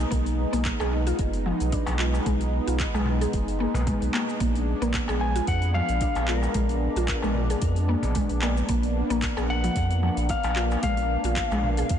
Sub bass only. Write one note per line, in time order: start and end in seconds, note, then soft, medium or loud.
0.12 0.46 B1 loud
0.53 0.71 B1 medium
0.81 1.13 B1 medium
1.19 1.53 F#1 medium
1.61 1.78 B1 medium
1.88 2.20 B1 loud
2.26 2.60 B1 loud
2.68 2.85 B1 medium
2.94 3.27 B1 medium
3.33 3.67 F#1 medium
3.75 3.92 B1 medium
4.02 4.10 B1 medium
4.40 4.75 A#1 loud
4.82 4.99 A#1 medium
5.09 5.41 A#1 medium
5.48 5.82 F2 medium
5.89 6.07 A#1 medium
6.16 6.49 A#1 loud
6.55 6.89 A#1 loud
6.96 7.14 A#1 medium
7.23 7.56 A#1 medium
7.62 7.96 F2 medium
8.04 8.21 A#1 medium
8.30 8.63 A#1 loud
8.69 9.03 A#1 loud
9.10 9.28 A#1 medium
9.38 9.70 A#1 medium
9.76 10.10 F2 medium
10.17 10.35 A#1 medium
10.44 10.77 A#1 loud
10.83 11.17 A#1 loud
11.24 11.42 A#1 medium
11.51 11.84 A#1 medium
11.91 11.99 F2 medium